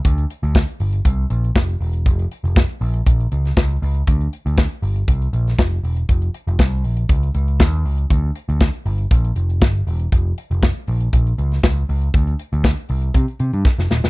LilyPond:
<<
  \new Staff \with { instrumentName = "Picked electric bass" } { \clef bass \time 4/4 \key bes \dorian \tempo 4 = 119 d,8 r16 d,8 r16 g,,8 c,8 bes,,8 f,,8 e,,8 | f,,8 r16 f,,8 r16 bes,,8 bes,,8 des,8 des,8 des,8 | d,8 r16 d,8 r16 g,,8 c,8 bes,,8 f,,8 e,,8 | f,,8 r16 f,,16 c,8 bes,,8 des,8 des,8 ees,8 des,8 |
d,8 r16 d,8 r16 g,,8 bes,,8 f,,8 g,,8 e,,8 | f,,8 r16 f,,8 r16 bes,,8 bes,,8 des,8 des,8 des,8 | d,8 r16 d,8 r16 c,8 c16 r16 c16 g,16 r16 f,,16 ees,,16 e,,16 | }
  \new DrumStaff \with { instrumentName = "Drums" } \drummode { \time 4/4 <hh bd>16 hh16 hh16 hh16 <bd sn>16 hh16 hho16 hh16 <hh bd>8 hh16 hh16 <bd sn>16 hh16 hho16 hh16 | <hh bd>16 hh16 hh16 hh16 <bd sn>8 hho16 hh16 <hh bd>16 hh16 hh16 <hh sn>16 <bd sn>16 hh16 hho16 hh16 | <hh bd>16 hh16 hh16 hh16 <bd sn>16 hh16 hho16 hh16 <hh bd>16 hh16 hh16 <hh sn>16 <bd sn>16 hh16 hho16 hh16 | <hh bd>16 hh16 hh16 hh16 <bd sn>8 hho16 hh16 <hh bd>16 hh16 hh16 hh16 <bd sn>8 hho16 hh16 |
<hh bd>8 hh16 hh16 <bd sn>16 hh16 hho16 hh16 <hh bd>16 hh16 hh16 hh16 <bd sn>16 hh16 hho16 hh16 | <hh bd>8 hh16 hh16 <bd sn>8 hho16 hh16 <hh bd>16 hh16 hh16 <hh sn>16 <bd sn>8 hho16 hh16 | <hh bd>16 hh16 hh16 hh16 <bd sn>16 hh16 hho16 hh16 <hh bd>16 hh16 hh16 hh16 <bd sn>16 sn16 sn16 sn16 | }
>>